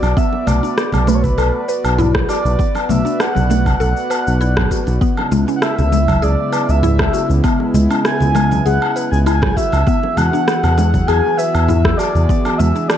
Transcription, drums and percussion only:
0.02 high bongo soft
0.02 cabasa soft
0.02 low woodblock medium
0.17 kick loud
0.17 cabasa soft
0.33 high bongo soft
0.47 high conga medium
0.47 cabasa medium
0.47 low woodblock medium
0.64 cabasa soft
0.78 cross-stick medium
0.78 cabasa soft
0.92 high conga medium
0.92 cabasa soft
0.92 low woodblock medium
1.07 high bongo medium
1.07 cabasa medium
1.24 kick medium
1.24 high conga medium
1.24 cabasa soft
1.38 cabasa soft
1.38 low woodblock medium
1.69 cabasa medium
1.85 cabasa soft
1.85 low woodblock medium
1.99 low conga loud
1.99 cabasa soft
2.15 kick loud
2.15 cross-stick medium
2.29 cabasa medium
2.29 low woodblock medium
2.45 high conga soft
2.45 cabasa soft
2.59 kick loud
2.59 cabasa soft
2.75 high bongo soft
2.75 cabasa soft
2.75 low woodblock medium
2.89 high conga medium
2.89 cabasa medium
3.06 cabasa soft
3.20 cross-stick medium
3.20 cabasa soft
3.20 low woodblock medium
3.36 high conga medium
3.36 cabasa soft
3.51 high bongo medium
3.51 cabasa medium
3.66 kick medium
3.66 high conga medium
3.66 cabasa soft
3.66 low woodblock medium
3.81 cabasa soft
3.97 cabasa soft
4.11 cabasa medium
4.11 low woodblock medium
4.27 cabasa soft
4.41 cabasa soft
4.57 kick loud
4.57 cross-stick medium
4.57 low conga medium
4.57 low woodblock medium
4.71 kick medium
4.71 cabasa medium
4.87 high bongo medium
4.87 cabasa soft
5.01 kick loud
5.01 cabasa soft
5.17 high bongo soft
5.17 low woodblock medium
5.32 high conga medium
5.32 cabasa medium
5.48 cabasa soft
5.62 cross-stick medium
5.62 cabasa soft
5.62 low woodblock medium
5.79 high conga medium
5.79 cabasa soft
5.92 high bongo medium
5.92 cabasa medium
6.08 kick medium
6.08 high conga medium
6.08 cabasa soft
6.08 low woodblock medium
6.23 cabasa soft
6.53 cabasa medium
6.53 low woodblock medium
6.69 cabasa soft
6.83 low conga medium
6.83 cabasa soft
6.99 kick medium
6.99 cross-stick medium
6.99 low woodblock medium
7.14 cabasa medium
7.30 high conga soft
7.30 cabasa soft
7.44 kick loud
7.44 cabasa soft
7.44 low woodblock medium
7.60 high bongo soft
7.75 high conga medium
7.75 cabasa medium
7.91 cabasa soft
7.91 low woodblock medium
8.05 cross-stick medium
8.05 cabasa soft
8.20 high conga medium
8.20 cabasa soft
8.35 high bongo medium
8.35 cabasa medium
8.35 low woodblock medium
8.52 high conga medium
8.52 cabasa soft
8.66 cabasa soft
8.82 low woodblock medium
8.97 cabasa medium
9.13 cabasa soft
9.27 cabasa soft
9.27 low woodblock medium
9.42 kick loud
9.42 cross-stick medium
9.42 low conga medium
9.57 kick medium
9.57 cabasa medium
9.72 high bongo soft
9.72 cabasa soft
9.72 low woodblock medium
9.87 kick loud
9.87 cabasa soft
10.03 high bongo medium
10.17 high conga medium
10.17 cabasa medium
10.17 low woodblock medium
10.34 cabasa soft
10.48 cross-stick medium
10.48 cabasa soft
10.63 high conga medium
10.63 cabasa soft
10.63 low woodblock medium
10.78 high bongo medium
10.78 cabasa medium
10.94 kick medium
10.94 high conga medium
10.94 cabasa soft
11.08 cabasa soft
11.08 low woodblock medium
11.39 cabasa medium
11.55 cabasa soft
11.55 low woodblock medium
11.69 low conga medium
11.69 cabasa soft
11.85 kick loud
11.85 cross-stick medium
11.99 cabasa medium
11.99 low woodblock medium
12.15 high conga soft
12.15 cabasa soft
12.29 kick loud
12.29 cabasa soft
12.45 high bongo medium
12.45 cabasa soft
12.45 low woodblock medium
12.60 high conga medium
12.60 cabasa medium
12.76 cabasa soft
12.90 cross-stick medium
12.90 cabasa soft
12.90 low woodblock medium

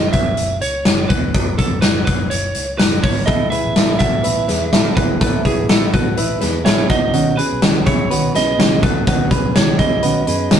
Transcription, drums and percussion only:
0.13 kick medium
0.13 closed hi-hat medium
0.37 closed hi-hat medium
0.62 closed hi-hat medium
0.85 snare loud
0.85 closed hi-hat medium
1.10 kick loud
1.10 closed hi-hat medium
1.34 kick loud
1.34 closed hi-hat medium
1.59 kick medium
1.59 closed hi-hat medium
1.82 snare loud
1.82 closed hi-hat medium
2.07 kick medium
2.07 closed hi-hat medium
2.31 closed hi-hat medium
2.55 closed hi-hat medium
2.79 snare loud
2.79 closed hi-hat medium
3.04 kick loud
3.04 open hi-hat medium
3.27 kick loud
3.27 closed hi-hat medium
3.52 closed hi-hat medium
3.76 snare loud
3.76 closed hi-hat medium
3.99 kick medium
3.99 closed hi-hat medium
4.24 closed hi-hat medium
4.48 snare soft
4.48 closed hi-hat medium
4.73 snare loud
4.73 closed hi-hat medium
4.97 kick loud
4.97 closed hi-hat medium
5.21 kick loud
5.21 closed hi-hat medium
5.45 kick medium
5.45 closed hi-hat medium
5.69 snare loud
5.69 closed hi-hat medium
5.93 kick medium
5.93 closed hi-hat medium
6.17 closed hi-hat medium
6.41 snare soft
6.41 closed hi-hat medium
6.66 snare loud
6.66 closed hi-hat loud
6.90 kick loud
6.90 closed hi-hat medium
7.14 closed hi-hat medium
7.39 closed hi-hat medium
7.62 snare loud
7.62 closed hi-hat medium
7.86 kick loud
7.86 closed hi-hat medium
8.11 closed hi-hat medium
8.35 snare soft
8.35 closed hi-hat medium
8.60 snare loud
8.60 closed hi-hat medium
8.83 kick loud
8.83 closed hi-hat medium
9.07 kick loud
9.07 closed hi-hat medium
9.31 kick medium
9.31 closed hi-hat medium
9.55 snare loud
9.55 closed hi-hat medium
9.79 kick medium
9.79 closed hi-hat medium
10.03 closed hi-hat medium
10.27 closed hi-hat medium
10.51 snare loud
10.51 closed hi-hat medium

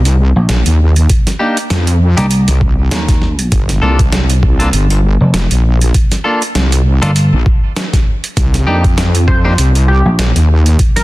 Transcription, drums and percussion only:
0.05 closed hi-hat medium
0.49 snare loud
0.49 closed hi-hat medium
0.66 closed hi-hat medium
0.96 closed hi-hat soft
1.10 kick loud
1.10 closed hi-hat medium
1.27 snare soft
1.27 closed hi-hat medium
1.57 closed hi-hat soft
1.70 snare loud
1.70 closed hi-hat medium
1.87 closed hi-hat soft
2.18 closed hi-hat soft
2.31 closed hi-hat medium
2.48 closed hi-hat medium
2.61 kick loud
2.91 snare loud
2.91 closed hi-hat medium
3.08 kick loud
3.08 snare soft
3.08 closed hi-hat medium
3.22 snare soft
3.39 closed hi-hat soft
3.52 kick loud
3.52 closed hi-hat medium
3.69 snare soft
3.69 closed hi-hat medium
3.99 kick loud
3.99 closed hi-hat soft
4.12 snare loud
4.12 closed hi-hat medium
4.30 closed hi-hat soft
4.43 kick loud
4.60 closed hi-hat soft
4.73 closed hi-hat medium
4.90 closed hi-hat soft
5.34 snare loud
5.34 closed hi-hat medium
5.51 closed hi-hat medium
5.81 closed hi-hat soft
5.94 kick loud
5.94 closed hi-hat medium
6.12 snare soft
6.12 closed hi-hat soft
6.42 closed hi-hat soft
6.55 snare loud
6.55 closed hi-hat medium
6.72 closed hi-hat medium
7.03 closed hi-hat soft
7.16 closed hi-hat medium
7.46 kick loud
7.76 snare loud
7.76 closed hi-hat medium
7.93 kick loud
7.93 snare soft
7.93 closed hi-hat medium
8.24 closed hi-hat soft
8.37 kick loud
8.37 closed hi-hat medium
8.54 snare soft
8.54 closed hi-hat soft
8.84 kick loud
8.84 closed hi-hat soft
8.98 snare loud
8.98 closed hi-hat medium
9.15 closed hi-hat soft
9.28 kick loud
9.58 closed hi-hat medium
9.75 closed hi-hat soft
10.19 snare loud
10.19 closed hi-hat medium
10.36 closed hi-hat soft
10.66 closed hi-hat soft
10.79 kick loud
10.79 closed hi-hat medium
10.96 snare soft
10.96 closed hi-hat soft

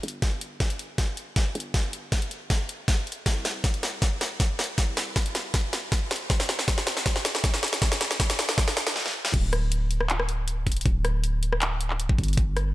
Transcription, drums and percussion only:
0.03 closed hi-hat soft
0.08 closed hi-hat medium
0.22 kick medium
0.22 snare medium
0.22 closed hi-hat medium
0.41 closed hi-hat medium
0.60 kick loud
0.60 snare medium
0.60 closed hi-hat medium
0.70 closed hi-hat medium
0.79 closed hi-hat medium
0.98 kick loud
0.98 snare medium
0.98 closed hi-hat medium
1.17 closed hi-hat medium
1.36 kick medium
1.36 snare medium
1.36 closed hi-hat medium
1.55 closed hi-hat soft
1.60 closed hi-hat medium
1.74 kick medium
1.74 snare medium
1.74 closed hi-hat medium
1.93 closed hi-hat medium
2.12 kick medium
2.12 snare medium
2.12 closed hi-hat medium
2.22 closed hi-hat medium
2.31 closed hi-hat medium
2.50 kick loud
2.50 snare medium
2.50 closed hi-hat medium
2.69 closed hi-hat medium
2.88 kick medium
2.88 snare medium
2.88 closed hi-hat medium
3.07 closed hi-hat soft
3.12 closed hi-hat medium
3.26 kick medium
3.26 snare medium
3.26 closed hi-hat medium
3.45 snare medium
3.45 closed hi-hat medium
3.64 kick loud
3.64 snare medium
3.64 closed hi-hat medium
3.74 closed hi-hat medium
3.83 snare medium
3.83 closed hi-hat medium
4.02 kick loud
4.02 snare medium
4.02 closed hi-hat medium
4.21 snare medium
4.21 closed hi-hat medium
4.40 kick loud
4.40 snare medium
4.40 closed hi-hat medium
4.59 snare medium
4.59 closed hi-hat soft
4.64 closed hi-hat medium
4.78 kick medium
4.78 snare medium
4.78 closed hi-hat medium
4.97 snare medium
4.97 closed hi-hat medium
5.16 kick medium
5.16 snare medium
5.16 closed hi-hat medium
5.26 closed hi-hat medium
5.35 snare medium
5.35 closed hi-hat medium
5.54 kick loud
5.54 snare medium
5.54 closed hi-hat medium
5.73 snare medium
5.73 closed hi-hat medium
5.92 kick loud
5.92 snare medium
5.92 closed hi-hat medium
6.11 snare medium
6.11 closed hi-hat soft
6.16 closed hi-hat medium
6.30 kick loud
6.30 snare medium
6.30 closed hi-hat medium
6.40 snare medium
6.49 snare medium
6.49 closed hi-hat medium
6.59 snare medium
6.68 kick loud
6.68 snare loud
6.68 closed hi-hat medium
6.78 snare medium
6.78 closed hi-hat medium
6.87 snare loud
6.87 closed hi-hat medium
6.97 snare medium
7.06 kick loud
7.06 snare loud
7.06 closed hi-hat medium
7.16 snare medium
7.25 snare medium
7.25 closed hi-hat medium
7.35 snare medium
7.44 kick loud
7.44 snare loud
7.44 closed hi-hat medium
7.54 snare medium
7.63 snare loud
7.63 closed hi-hat soft
7.68 closed hi-hat medium
7.73 snare medium
7.82 kick loud
7.82 snare loud
7.82 closed hi-hat medium
7.92 snare medium
8.01 snare loud
8.01 closed hi-hat medium
8.11 snare medium
8.20 kick loud
8.20 snare loud
8.20 closed hi-hat medium
8.30 snare loud
8.30 closed hi-hat medium
8.39 snare loud
8.39 closed hi-hat medium
8.49 snare medium
8.58 kick loud
8.58 snare loud
8.58 closed hi-hat medium
8.68 snare medium
8.77 snare loud
8.77 closed hi-hat medium
8.87 snare loud
8.96 snare medium
9.06 snare medium
9.25 snare medium
9.34 kick loud
9.34 closed hi-hat medium
9.34 crash loud
9.53 cross-stick medium
9.53 closed hi-hat medium
9.72 closed hi-hat medium
9.91 closed hi-hat medium
10.01 cross-stick medium
10.10 clap loud
10.10 closed hi-hat medium
10.20 cross-stick medium
10.29 closed hi-hat medium
10.48 closed hi-hat medium
10.67 kick medium
10.67 closed hi-hat medium
10.72 closed hi-hat medium
10.77 closed hi-hat medium
10.81 closed hi-hat medium
10.86 kick loud
10.86 closed hi-hat medium
11.05 cross-stick medium
11.05 closed hi-hat medium
11.24 closed hi-hat medium
11.43 closed hi-hat medium
11.53 cross-stick medium
11.62 clap loud
11.62 closed hi-hat medium
11.81 closed hi-hat medium
11.90 clap soft
12.00 closed hi-hat medium
12.09 kick loud
12.18 kick medium
12.18 closed hi-hat soft
12.24 closed hi-hat medium
12.28 closed hi-hat soft
12.33 closed hi-hat medium
12.37 kick loud
12.37 closed hi-hat medium
12.57 cross-stick medium
12.57 closed hi-hat medium

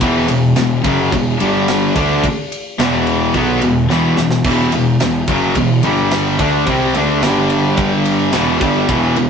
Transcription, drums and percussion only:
0.01 kick loud
0.01 ride loud
0.28 ride medium
0.56 snare loud
0.56 ride loud
0.84 kick loud
0.84 ride medium
1.12 kick medium
1.12 ride loud
1.40 ride medium
1.68 snare loud
1.68 ride loud
1.96 kick loud
1.96 ride medium
2.24 kick medium
2.24 ride loud
2.52 ride medium
2.79 snare loud
2.79 ride medium
3.07 ride medium
3.34 kick loud
3.34 ride medium
3.62 ride medium
3.90 snare medium
4.17 snare loud
4.31 snare medium
4.44 kick loud
4.44 crash medium
4.44 ride medium
4.72 ride medium
5.00 snare loud
5.00 ride loud
5.28 kick loud
5.28 ride medium
5.55 kick medium
5.55 ride loud
5.83 ride medium
6.11 snare loud
6.11 ride loud
6.39 kick loud
6.39 ride medium
6.67 kick medium
6.67 ride loud
6.95 ride medium
7.22 snare loud
7.22 ride loud
7.50 ride medium
7.77 kick loud
7.77 ride medium
8.05 ride medium
8.32 snare loud
8.32 ride loud
8.61 kick loud
8.61 ride medium
8.89 kick loud
8.89 ride medium
9.16 ride medium

